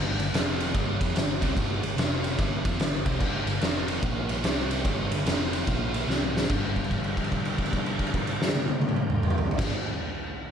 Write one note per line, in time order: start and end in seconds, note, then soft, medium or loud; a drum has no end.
0.00 0.17 G1 medium
0.00 0.17 G2 medium
0.00 0.17 D3 medium
0.00 0.18 G3 loud
0.00 0.33 A#3 medium
0.00 0.33 G4 medium
0.00 0.33 D5 medium
0.18 0.32 G1 medium
0.18 0.30 G2 medium
0.18 0.30 D3 medium
0.18 ride medium
0.32 0.71 F1 medium
0.32 0.73 F2 medium
0.32 0.74 C3 medium
0.32 0.74 F3 medium
0.32 0.74 C4 medium
0.32 0.74 F4 medium
0.32 0.74 F5 medium
0.32 snare loud
0.32 ride loud
0.60 ride medium
0.74 0.99 G1 loud
0.74 1.00 G2 medium
0.74 1.00 D3 medium
0.74 1.00 G3 medium
0.74 1.96 A#3 medium
0.74 1.96 G4 medium
0.74 1.96 D5 medium
0.74 kick loud
0.74 ride loud
1.00 1.15 F2 medium
1.00 1.15 F3 medium
1.00 1.15 C4 medium
1.00 1.16 F4 loud
1.00 kick loud
1.00 ride medium
1.15 1.40 G1 medium
1.15 1.36 G2 medium
1.15 1.37 D3 medium
1.15 snare loud
1.15 ride loud
1.41 1.56 C2 medium
1.41 1.56 C3 medium
1.41 1.56 G3 medium
1.41 1.56 C4 loud
1.41 kick loud
1.41 ride medium
1.55 1.81 G1 loud
1.55 1.82 G2 loud
1.55 1.82 D3 loud
1.55 1.82 G3 loud
1.55 kick loud
1.55 ride loud
1.82 1.96 G1 medium
1.82 1.95 G2 medium
1.82 1.95 D3 medium
1.82 ride medium
1.97 2.35 F1 medium
1.97 2.37 F2 medium
1.97 2.38 C3 medium
1.97 2.38 F3 medium
1.97 2.38 C4 medium
1.97 2.38 F4 medium
1.97 2.38 F5 medium
1.97 snare loud
1.97 ride loud
2.24 ride medium
2.37 2.63 G1 loud
2.37 2.64 G2 medium
2.37 2.64 D3 medium
2.37 2.64 G3 loud
2.37 3.60 A#3 medium
2.37 3.60 G4 medium
2.37 3.60 D5 medium
2.37 kick loud
2.37 ride medium
2.64 2.79 F2 medium
2.64 2.79 F3 medium
2.64 2.79 C4 loud
2.64 2.79 F4 loud
2.64 kick loud
2.64 ride medium
2.79 3.04 G1 medium
2.79 3.01 G2 medium
2.79 3.01 D3 medium
2.79 snare loud
2.79 ride medium
3.06 3.20 C2 loud
3.06 3.20 C3 medium
3.06 3.20 G3 medium
3.06 3.21 C4 medium
3.06 kick loud
3.06 ride medium
3.20 3.45 G1 loud
3.20 3.45 G2 loud
3.20 3.46 D3 loud
3.20 3.47 G3 loud
3.20 kick loud
3.20 crash loud
3.46 3.61 G1 medium
3.46 3.58 G2 medium
3.46 3.59 D3 medium
3.46 ride medium
3.61 4.00 F1 medium
3.61 4.02 F2 medium
3.61 4.02 C3 loud
3.61 4.02 F3 loud
3.61 4.02 C4 medium
3.61 4.02 F4 medium
3.61 4.02 F5 medium
3.61 snare loud
3.61 ride medium
3.88 ride medium
4.03 4.41 A#1 loud
4.03 4.43 A#2 medium
4.03 4.44 F3 medium
4.03 4.44 A#3 medium
4.03 4.44 A#3 loud
4.03 4.43 F4 medium
4.03 4.44 F5 medium
4.03 kick loud
4.03 ride loud
4.29 ride medium
4.44 4.82 C2 loud
4.44 4.84 C3 medium
4.44 4.84 G3 loud
4.44 4.85 C4 loud
4.44 4.86 C4 medium
4.44 4.85 G4 medium
4.44 4.84 G5 medium
4.44 snare loud
4.44 ride loud
4.71 ride medium
4.84 5.09 G1 medium
4.84 5.10 G2 medium
4.84 5.11 D3 loud
4.84 5.11 G3 loud
4.84 5.26 D4 medium
4.84 5.26 A#4 medium
4.84 5.26 G5 medium
4.84 kick loud
4.84 ride loud
5.11 5.25 G1 medium
5.11 5.23 G2 medium
5.11 5.23 D3 medium
5.11 ride medium
5.26 5.64 F1 medium
5.26 5.66 F2 loud
5.26 5.66 C3 medium
5.26 5.65 F3 loud
5.26 5.67 C4 medium
5.26 5.64 F4 medium
5.26 5.64 F5 medium
5.26 snare loud
5.26 ride loud
5.53 ride medium
5.65 6.05 A#1 medium
5.65 6.07 A#2 medium
5.65 6.07 F3 loud
5.65 6.07 A#3 medium
5.65 6.08 A#3 loud
5.65 6.07 F4 medium
5.65 6.07 F5 medium
5.65 kick loud
5.65 ride medium
5.94 ride medium
6.08 6.46 C2 medium
6.08 6.49 C3 medium
6.08 6.49 G3 medium
6.08 6.49 C4 medium
6.08 6.49 C4 loud
6.08 6.49 G4 medium
6.08 6.49 G5 medium
6.08 snare medium
6.22 mid tom medium
6.37 snare medium
6.44 snare medium
6.48 9.48 G1 loud
6.48 9.57 G2 loud
6.48 9.60 D3 loud
6.48 9.61 G3 loud
6.48 9.50 D4 medium
6.48 9.49 A#4 medium
6.48 9.50 G5 medium
6.48 kick loud
6.48 crash medium
6.76 kick medium
6.76 crash soft
6.84 crash soft
6.91 kick medium
6.91 crash soft
7.04 crash soft
7.17 kick medium
7.17 crash soft
7.24 crash soft
7.32 kick medium
7.32 crash soft
7.45 crash soft
7.58 kick medium
7.58 crash soft
7.66 crash medium
7.73 kick medium
7.73 crash soft
7.86 crash medium
7.99 kick medium
7.99 crash medium
8.07 crash soft
8.14 kick medium
8.14 crash medium
8.27 crash medium
8.42 snare medium
8.49 snare medium
8.55 high tom medium
8.68 high tom medium
8.81 high tom loud
8.89 mid tom medium
8.96 mid tom medium
9.10 mid tom medium
9.23 mid tom loud
9.30 mid tom loud
9.38 floor tom loud
9.51 floor tom loud
9.57 9.73 G1 medium
9.57 9.74 G2 loud
9.57 9.75 D3 loud
9.57 9.74 D4 medium
9.57 9.73 A#4 medium
9.57 9.74 G5 medium
9.57 kick loud
9.57 snare loud
9.57 crash loud
9.62 9.76 G3 loud